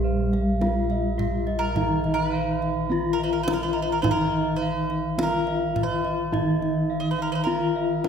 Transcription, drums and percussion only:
0.33 kendang slap soft
0.61 kendang high soft
0.90 kendang slap soft
1.19 kendang low medium
1.47 kendang slap soft
1.76 kendang low medium
2.04 kendang slap soft
2.62 kendang slap soft
3.48 kendang high medium
4.04 kendang high soft
4.04 kendang low medium
4.90 kendang slap soft
5.19 kendang high medium
5.47 kendang slap soft
5.76 kendang low medium
6.05 kendang slap soft
6.34 kendang low medium
6.62 kendang slap soft
7.19 kendang slap soft
8.04 kendang high medium

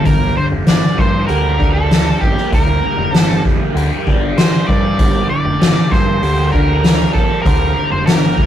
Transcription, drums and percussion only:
0.05 kick medium
0.05 open hi-hat soft
0.67 snare loud
0.67 open hi-hat soft
0.98 kick medium
1.29 open hi-hat soft
1.60 kick medium
1.91 snare medium
1.91 open hi-hat soft
2.22 kick medium
2.37 snare soft
2.53 kick medium
2.53 open hi-hat soft
3.15 snare loud
3.15 open hi-hat medium
3.45 kick medium
3.77 open hi-hat soft
4.07 kick medium
4.38 snare loud
4.38 open hi-hat soft
4.69 kick medium
4.99 kick loud
4.99 open hi-hat soft
5.62 snare loud
5.62 open hi-hat soft
5.92 kick medium
5.92 snare soft
6.23 open hi-hat soft
6.53 kick medium
6.84 snare loud
6.84 open hi-hat soft
7.15 kick medium
7.46 kick medium
7.46 open hi-hat soft
8.07 snare loud
8.07 open hi-hat soft
8.38 kick medium

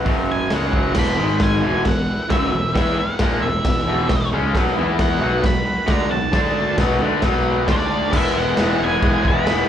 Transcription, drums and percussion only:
0.06 kick loud
0.06 open hi-hat medium
0.50 snare loud
0.50 open hi-hat soft
0.73 kick loud
0.95 kick loud
0.95 snare loud
0.95 crash loud
0.95 crash medium
1.40 kick loud
1.40 snare loud
1.40 crash medium
1.85 kick loud
1.85 snare loud
1.85 crash medium
2.30 kick loud
2.30 snare loud
2.30 crash medium
2.75 kick loud
2.75 snare loud
2.75 crash medium
3.19 kick loud
3.19 snare loud
3.19 crash medium
3.65 kick loud
3.65 snare loud
3.65 crash medium
4.09 kick loud
4.09 snare loud
4.09 crash medium
4.55 kick loud
4.55 snare loud
4.55 crash medium
4.99 kick loud
4.99 snare loud
4.99 crash medium
5.44 kick loud
5.44 snare loud
5.44 crash medium
5.88 kick loud
5.88 snare loud
5.88 crash medium
6.33 kick loud
6.33 snare loud
6.33 crash medium
6.78 kick loud
6.78 snare loud
6.78 crash medium
7.22 kick loud
7.22 snare loud
7.22 crash medium
7.68 kick loud
7.68 snare loud
7.68 crash medium
8.13 kick medium
8.13 crash loud
8.13 crash medium
8.57 snare loud
8.57 crash medium
9.02 kick loud
9.02 crash medium
9.25 kick medium
9.47 snare loud
9.47 crash medium

